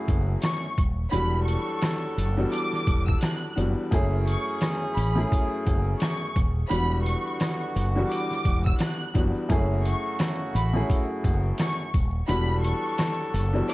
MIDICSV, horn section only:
0, 0, Header, 1, 2, 480
1, 0, Start_track
1, 0, Key_signature, 3, "minor"
1, 0, Tempo, 697674
1, 775, Time_signature, 4, 2, 24, 8
1, 9452, End_track
2, 0, Start_track
2, 0, Title_t, "Horn section"
2, 0, Program_c, 0, 61
2, 0, Note_on_c, 0, 49, 89
2, 0, Note_on_c, 0, 57, 82
2, 0, Note_on_c, 0, 66, 96
2, 511, Note_off_c, 0, 49, 0
2, 511, Note_off_c, 0, 57, 0
2, 511, Note_off_c, 0, 66, 0
2, 770, Note_on_c, 0, 54, 87
2, 770, Note_on_c, 0, 62, 87
2, 771, Note_on_c, 0, 69, 98
2, 2425, Note_off_c, 0, 54, 0
2, 2425, Note_off_c, 0, 62, 0
2, 2425, Note_off_c, 0, 69, 0
2, 2696, Note_on_c, 0, 52, 86
2, 2696, Note_on_c, 0, 61, 88
2, 2696, Note_on_c, 0, 68, 104
2, 4348, Note_off_c, 0, 52, 0
2, 4348, Note_off_c, 0, 61, 0
2, 4348, Note_off_c, 0, 68, 0
2, 4619, Note_on_c, 0, 50, 93
2, 4619, Note_on_c, 0, 59, 88
2, 4619, Note_on_c, 0, 66, 102
2, 6269, Note_off_c, 0, 50, 0
2, 6269, Note_off_c, 0, 59, 0
2, 6269, Note_off_c, 0, 66, 0
2, 6542, Note_on_c, 0, 49, 90
2, 6542, Note_on_c, 0, 66, 92
2, 6543, Note_on_c, 0, 57, 82
2, 8191, Note_off_c, 0, 49, 0
2, 8191, Note_off_c, 0, 57, 0
2, 8191, Note_off_c, 0, 66, 0
2, 8450, Note_on_c, 0, 62, 91
2, 8451, Note_on_c, 0, 54, 88
2, 8451, Note_on_c, 0, 69, 102
2, 9452, Note_off_c, 0, 54, 0
2, 9452, Note_off_c, 0, 62, 0
2, 9452, Note_off_c, 0, 69, 0
2, 9452, End_track
0, 0, End_of_file